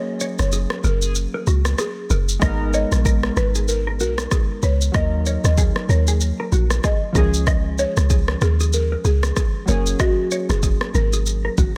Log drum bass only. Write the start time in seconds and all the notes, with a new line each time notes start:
0.39 F#1
0.84 F#1
1.47 C#2
2.10 F#1
2.42 G#1
2.92 A#1
3.36 G#1
4.00 B1
4.63 C#2
4.95 D#2
5.44 D#2
5.89 D#2
6.52 A#1
7.15 C#2
7.97 C#2
8.41 D#2
9.05 C#2
9.68 F#1
10.49 F#1
10.94 G#1
11.58 G#1